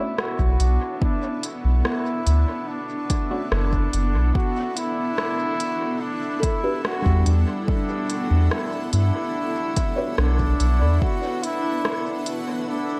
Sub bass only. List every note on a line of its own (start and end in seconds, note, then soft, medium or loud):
0.39 0.57 B1 medium
0.60 0.78 B1 medium
1.64 1.83 B1 medium
2.27 2.45 D2 medium
3.52 3.88 F#1 loud
3.93 4.15 F#1 medium
4.14 4.32 B1 medium
7.06 7.24 E2 loud
7.27 7.45 E2 loud
8.31 8.49 E2 medium
8.93 9.12 G2 medium
10.18 10.55 B1 loud
10.60 10.83 B1 medium
10.81 10.99 E2 loud